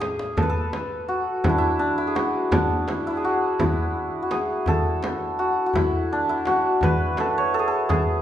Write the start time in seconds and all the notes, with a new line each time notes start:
Already playing: A2 D4 F4
0.00 G#4, tombak tek, frame drum
0.19 tombak ka
0.37 A4, tombak dum, frame drum
0.43 B4
0.49 A4
0.73 tombak tek, frame drum
1.08 F#4, tombak ka
1.44 E4, tombak dum, frame drum
1.49 D4
1.58 E4
1.79 D4, tombak ka
1.98 E4
2.07 G#4
2.15 F#4, tombak tek, frame drum
2.52 D4, tombak dum, frame drum
2.88 E4, tombak tek, frame drum
3.07 E4
3.17 G#4
3.24 F#4, tombak ka
3.60 E4, frame drum, tombak dum
3.96 tombak ka
4.22 F#4
4.31 G#4, tombak tek, frame drum
4.66 A4, tombak dum, frame drum
5.03 tombak tek, frame drum
5.38 F#4, tombak ka
5.66 F#4
5.74 E4, tombak dum, frame drum
6.10 D4, tombak ka
6.29 E4
6.45 F#4, tombak tek, frame drum
6.81 B4, tombak dum, frame drum
7.17 A4, tombak tek, frame drum
7.38 C#5
7.54 A4, tombak ka
7.59 G#4
7.68 A4
7.89 G#4, tombak dum, frame drum